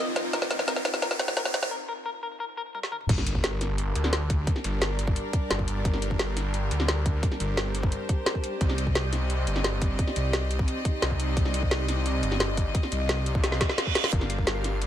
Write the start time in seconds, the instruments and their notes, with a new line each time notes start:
Already playing: string section C4 G4 D#5 D6, ambient pad C4 D#4 F4 A#4, riser
0.16 snare, closed hi-hat
0.33 clean electric guitar A#4, snare, closed hi-hat
0.42 snare
0.51 snare, closed hi-hat
0.59 snare
0.68 clean electric guitar A#4, snare, closed hi-hat
0.76 snare
0.85 snare, closed hi-hat
0.94 snare
1.02 clean electric guitar A#4, snare, closed hi-hat
1.11 snare
1.19 snare, closed hi-hat
1.28 snare
1.37 clean electric guitar A#4, snare, closed hi-hat
1.45 snare
1.54 snare, closed hi-hat
1.63 snare
1.71 clean electric guitar A#4
1.88 clean electric guitar A#4
2.06 clean electric guitar A#4
2.23 clean electric guitar A#4
2.40 clean electric guitar A#4
2.57 clean electric guitar A#4
2.75 clean electric guitar A#4, high tom
2.83 snare
2.92 clean electric guitar A#4, mid tom
3.01 mid tom
3.09 detuned saw bass G1, string section G3 D4 G4 A#4, kick, closed hi-hat, crash, sub drop
3.18 snare
3.27 closed hi-hat
3.35 kick
3.44 detuned saw bass G1, snare, closed hi-hat
3.61 snare, closed hi-hat
3.78 closed hi-hat
3.95 detuned saw bass D2, ambient pad D5, closed hi-hat
4.04 snare
4.13 snare, closed hi-hat
4.30 kick, closed hi-hat
4.47 kick, closed hi-hat
4.56 snare
4.64 detuned saw bass G1, closed hi-hat
4.82 snare, closed hi-hat
4.99 closed hi-hat
5.07 kick
5.16 closed hi-hat
5.33 kick, closed hi-hat
5.51 detuned saw bass G1, snare, closed hi-hat
5.59 kick
5.68 closed hi-hat
5.85 detuned saw bass G1, kick, closed hi-hat
5.94 snare
6.02 closed hi-hat
6.11 kick
6.19 detuned saw bass G1, snare, closed hi-hat
6.37 snare, closed hi-hat
6.46 ambient pad C5
6.54 closed hi-hat
6.71 detuned saw bass D2, closed hi-hat
6.80 snare
6.88 snare, closed hi-hat
7.06 kick, closed hi-hat
7.23 kick, closed hi-hat
7.32 snare
7.40 detuned saw bass G1, closed hi-hat
7.57 snare, closed hi-hat
7.75 closed hi-hat
7.83 kick
7.92 closed hi-hat
8.09 kick, closed hi-hat
8.26 snare, closed hi-hat
8.35 kick
8.44 closed hi-hat
8.61 detuned saw bass C2, string section C4 D5 D#5, kick, closed hi-hat
8.69 snare
8.78 closed hi-hat
8.87 kick
8.95 detuned saw bass C2, snare, closed hi-hat
9.13 snare, closed hi-hat
9.30 closed hi-hat
9.47 detuned saw bass G1, closed hi-hat
9.56 snare
9.64 snare, closed hi-hat
9.82 ambient pad D#4, kick, closed hi-hat
9.99 kick, closed hi-hat
10.07 snare
10.16 detuned saw bass C2, closed hi-hat
10.33 snare, closed hi-hat
10.51 closed hi-hat
10.59 kick
10.68 closed hi-hat
10.85 kick, closed hi-hat
11.02 detuned saw bass C2, snare, closed hi-hat
11.11 kick
11.20 closed hi-hat
11.37 detuned saw bass C2, kick, closed hi-hat
11.45 snare
11.54 closed hi-hat
11.63 kick
11.71 detuned saw bass C2, snare, closed hi-hat
11.87 ambient pad F5, snare, closed hi-hat
12.06 closed hi-hat
12.23 detuned saw bass G1, closed hi-hat
12.32 snare
12.40 snare, closed hi-hat
12.57 kick, closed hi-hat
12.75 kick, closed hi-hat
12.83 snare
12.92 detuned saw bass C2, closed hi-hat
13.09 snare, closed hi-hat
13.26 closed hi-hat
13.35 kick
13.44 detuned saw bass C2, snare, closed hi-hat, reverse cymbal
13.52 snare
13.61 kick, snare, closed hi-hat
13.69 snare
13.78 snare, closed hi-hat
13.87 kick
13.95 snare, closed hi-hat
14.04 snare
14.12 detuned saw bass G1, string section G3 D4 G4 A#4, ambient pad C4, kick, closed hi-hat
14.21 snare
14.30 ambient pad F4, closed hi-hat
14.38 kick
14.47 detuned saw bass G1, snare, closed hi-hat
14.64 snare, closed hi-hat
14.82 closed hi-hat